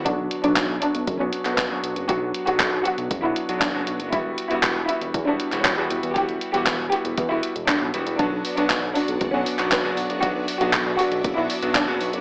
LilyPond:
<<
  \new Staff \with { instrumentName = "String machine" } { \time 4/4 \key b \minor \tempo 4 = 118 << { r1 | r1 | r1 | r1 |
fis''1 | e''1 | } \\ { r1 | r1 | r1 | r1 |
<b d' fis' d''>1~ | <b d' fis' d''>1 | } >> }
  \new Staff \with { instrumentName = "Violin section" } { \time 4/4 \key b \minor d'8 r16 d'8 r16 d'8 r16 cis'8 r16 b8. r16 | fis'8 r16 fis'8 r16 fis'8 r16 e'8 r16 d'8. r16 | e'8 r16 e'8 r16 e'8 r16 d'8 r16 cis'8. r16 | g'8 r16 g'8 r16 g'8 r16 e'8 r16 d'8. r16 |
d'8 r16 d'8 r16 d'8 r16 cis'8 r16 b8. r16 | fis'8 r16 fis'8 r16 fis'8 r16 e'8 r16 d'8. r16 | }
  \new Staff \with { instrumentName = "Electric grand piano" } { \time 4/4 \key b \minor <fis b d' fis'>8. <fis b d' fis'>8 r16 <fis b d' fis'>8 r16 <fis b d' fis'>8 <fis b d' fis'>8 <fis b d' fis'>8. | <fis b d' fis'>8. <fis b d' fis'>8 r16 <fis b d' fis'>8 r16 <fis b d' fis'>8 <fis b d' fis'>8 <fis b d' fis'>8. | <g b e' fis'>8. <g b e' fis'>8 r16 <g b e' fis'>8 r16 <g b e' fis'>8 <g b e' fis'>8 <g b e' fis'>8. | <g b e' fis'>8. <g b e' fis'>8 r16 <g b e' fis'>8 r16 <g b e' fis'>8 r16 <g b e' fis'>8 <g b e' fis'>8 |
<fis b d' fis'>8. <fis b d' fis'>8 r16 <fis b d' fis'>8 r16 <fis b d' fis'>8 <fis b d' fis'>8 <fis b d' fis'>8. | <fis b d' fis'>8. <fis b d' fis'>8 r16 <fis b d' fis'>8 r16 <fis b d' fis'>8 <fis b d' fis'>8 <fis b d' fis'>8. | }
  \new Staff \with { instrumentName = "Analog synth bass" } { \clef bass \time 4/4 \key b \minor b,,16 b,,16 r16 b,,16 b,,16 b,,16 r16 b,,16 fis,,16 b,,16 r16 b,,16 b,,16 fis,,16 b,,16 fis,,16 | b,,16 b,,16 r16 b,,16 b,,16 b,,16 r16 b,,16 fis,,16 b,,16 r16 b,,16 b,,16 fis,,16 b,,16 fis,,16 | e,,16 e,,16 r16 e,,16 e,,16 e,,16 r16 e,,16 e,16 e,,16 r16 e,,16 e,,16 e,16 e,,16 e,16 | e,,16 e,,16 r16 e,,16 e,,16 e,,16 r16 e,,16 e,16 e,,16 r16 e,,16 e,,16 b,,16 e,,16 e,,16 |
b,,16 b,,16 r16 b,,16 b,,16 b,,16 r16 b,,16 fis,,16 b,,16 r16 b,,16 b,,16 fis,,16 b,,16 fis,,16 | b,,16 b,,16 r16 b,,16 b,,16 b,,16 r16 b,,16 fis,,16 b,,16 r16 b,,16 b,,16 fis,,16 b,,16 fis,,16 | }
  \new DrumStaff \with { instrumentName = "Drums" } \drummode { \time 4/4 <hh bd>8 hh16 hh16 <hc hh bd>8 hh16 hh16 <hh bd>8 hh16 <hc hh>16 <hc hh bd>8 hh16 hh16 | <hh bd>8 hh16 hh16 <hc hh bd>8 hh16 hh16 <hh bd>8 hh16 hh16 <hc hh bd>8 hh16 hh16 | <hh bd>8 hh16 hh16 <hc hh bd>8 hh16 hh16 <hh bd>8 hh16 <hc hh>16 <hc hh bd>8 hh16 hh16 | <hh bd>16 hh16 hh16 hh16 <hc hh bd>8 hh16 hh16 <hh bd>8 hh16 hh16 <hc hh bd>8 hh16 hh16 |
<hh bd>8 hho16 hh16 <hc hh bd>8 hho16 hh16 <hh bd>8 hho16 <hc hh>16 <hc hh bd>8 hho16 hh16 | <hh bd>8 hho16 hh16 <hc hh bd>8 hho16 hh16 <hh bd>8 hho16 hh16 <hc hh bd>8 hho16 hh16 | }
>>